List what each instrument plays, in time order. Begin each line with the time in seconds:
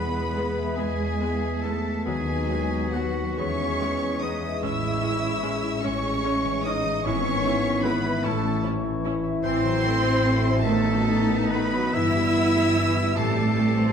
Already playing: double bass section E2, timpani E2, harp E3 B3 E4 B4 E5, french horn section G#3 B3, cello section B3, clarinet G#4, oboe B4, violin section B4 B5, flute B6
0.16 harp G#4
0.36 viola section G#3 B3, harp B4
0.58 harp E5
0.76 double bass section E2, cello section G#3, viola section G#3 B3, oboe G#4, violin section G#4 G#5, harp B4
1.20 viola section G#3 B3, harp E4
1.42 harp B3
1.62 viola section G#3 B3, cello section A3, harp E4, oboe A4, violin section A4 A5
1.85 harp B3
2.05 double bass section D#2, harp D#3, viola section F#3 B3, french horn section F#3, cello section G#3, clarinet F#4, violin section G#4 G#5, oboe G#4
2.27 harp D#4
2.49 viola section F#3 B3, harp F#4
2.71 harp D#4
2.91 cello section F#3, viola section F#3 B3, violin section F#4 F#5, oboe F#4, harp B4
3.17 harp F#5
3.36 double bass section E2, harp E3, french horn section G#3, viola section G#3 B3, cello section C#4, clarinet G#4, violin section C#5 C#6, oboe C#5
3.60 harp B3
3.80 viola section G#3 B3, harp E4
4.03 harp G#4
4.22 viola section G#3 B3, cello section D#4, harp B4, violin section D#5 D#6, oboe D#5
4.42 harp E5
4.61 double bass section A1, harp A2, viola section G#3 C#4, french horn section C#4, cello section E4, violin section E5 E6, oboe E5, flute C#6
4.81 harp E3
5.02 viola section G#3 C#4, harp E4
5.22 harp G#4
5.42 viola section G#3 C#4, harp C#5
5.62 harp E5
5.82 double bass section A1, viola section G#3 C#4, cello section C#4, violin section C#5 C#6, harp C#5, oboe C#5
6.03 harp G#4
6.24 viola section G#3 C#4, harp E4
6.44 harp E3
6.64 viola section G#3 C#4, cello section D#4, harp E4, violin section D#5 D#6, oboe D#5
6.85 harp E3
7.04 double bass section G#1, harp G#2, french horn section E3 B3, viola section G#3 E4, cello section C#4, clarinet E4, oboe C#5, violin section C#5 C#6, flute B6
7.24 harp G#3
7.44 viola section G#3 E4, harp E4
7.64 harp G#4
7.83 viola section G#3 E4, cello section B3, oboe B4, harp B4, violin section B4 B5
8.04 harp E5
8.23 double bass section A1, harp A2, cello section A3, viola section C#4 E4, french horn section C#4, oboe A4, violin section A4 A5, flute C#6
8.43 harp E3
8.63 viola section C#4 E4, harp E4
8.83 harp E3
9.03 viola section C#4 E4, harp C#5
9.24 harp E5
9.43 double bass section A1, harp A2, viola section E3 E4, french horn section C4, cello section C4, oboe C5, violin section C5 C6, flute C7
9.64 harp E3, viola section F#3
9.83 viola section A3, harp E4
10.03 viola section C4, harp F#4
10.23 viola section A3, harp C5
10.42 viola section F#3, harp E5
10.63 harp A2, viola section D#3 D#4, french horn section D#3 B3, cello section A3, clarinet D#4, violin section A4 A5, oboe A4, flute B6
10.85 viola section F#3, harp A3
11.06 viola section A3, harp D#4
11.28 viola section B3, harp F#4
11.50 viola section A3, cello section B3, violin section B4 B5, oboe B4, harp B4
11.73 viola section F#3, harp D#5
11.93 double bass section G1, harp G2, french horn section E3, viola section E3 E4, clarinet E4, cello section E4, violin section E5 E6, oboe E5
12.16 harp G3, viola section G3
12.36 viola section B3
12.56 viola section G3, harp G4
12.76 viola section E3, harp B4
12.96 viola section G3, harp E5
13.16 double bass section A1, harp A2, viola section E3 G4, french horn section G3 C4, cello section A3, clarinet G4, violin section A4 A5, oboe A4, flute C7
13.36 harp E3, viola section G3
13.56 viola section A3, harp E4
13.76 viola section C4, harp G4